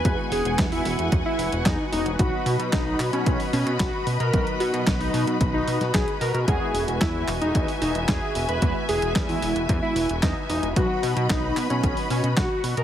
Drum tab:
HH |x-oxxooxx-oxx-ox|x-oxx-oxxooxx-ox|xxoxxooxx-oxxxox|x-oxx-oxxooxx-ox|
CP |----x-------x---|----x-x-----x---|----x-------x---|----x-x-----x---|
SD |----o-------o---|----o-------o---|----o------oo---|----o-------o---|
BD |o---o---o---o---|o---o---o---o---|o---o---o---o---|o---o---o---o---|

HH |x-oxxooxx-oxx-ox|x-oxx-oxxooxx-ox|
CP |----x-------x---|----x-x-----x---|
SD |----o-------o---|----o-------o---|
BD |o---o---o---o---|o---o---o---o---|